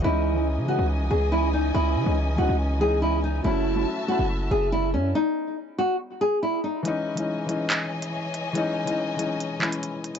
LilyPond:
<<
  \new Staff \with { instrumentName = "String section" } { \time 4/4 \key cis \minor \tempo 4 = 141 << { <e dis'' gis''>1~ | <e dis'' gis''>1 | <fis' e'' a''>1 | r1 |
<cis'' dis'' gis''>1~ | <cis'' dis'' gis''>1 | } \\ { cis'1~ | cis'1~ | cis'1 | r1 |
e1~ | e1 | } >> }
  \new Staff \with { instrumentName = "Nylon-string guitar" } { \time 4/4 \key cis \minor e'4 r8 fis'8 r8 gis'8 e'8 dis'8 | e'4 r8 fis'8 r8 gis'8 e'8 dis'8 | e'4 r8 fis'8 r8 gis'8 e'8 cis'8 | dis'4 r8 fis'8 r8 gis'8 e'8 dis'8 |
r1 | r1 | }
  \new Staff \with { instrumentName = "Felt piano" } { \time 4/4 \key cis \minor <e gis cis' dis'>8 r16 <e gis cis' dis'>8 r16 <e gis cis' dis'>4. r4 | r8. <e gis cis' dis'>8 r16 <e gis cis' dis'>8. r16 <e gis cis' dis'>4~ <e gis cis' dis'>16 r16 | <fis a cis' e'>8 r16 <fis a cis' e'>8 r16 <fis a cis' e'>4. r4 | r1 |
<e gis cis' dis'>8 r16 <e gis cis' dis'>8 r16 <e gis cis' dis'>4. r4 | <e gis cis' dis'>8 r16 <e gis cis' dis'>8 r16 <e gis cis' dis'>8. r16 <e gis cis' e'>4~ <e gis cis' e'>16 r16 | }
  \new Staff \with { instrumentName = "808-style bass" } { \clef bass \time 4/4 \key cis \minor cis,4~ cis,16 cis8 cis,8 bis,,16 cis,4. | cis,8 cis16 cis,8. cis,16 cis,2~ cis,16 | fis,,4 r8. fis,,8. fis,,4 fis,8 | r1 |
r1 | r1 | }
  \new DrumStaff \with { instrumentName = "Drums" } \drummode { \time 4/4 r4 r4 r4 r4 | r4 r4 r4 r4 | r4 r4 r4 r4 | r4 r4 r4 r4 |
hh8. hh16 r8 hh8 <hc hh>8. hh16 r8 hh8 | hh8. hh16 r8 hh8 hh8 hc16 hh16 hh8 hh16 hh16 | }
>>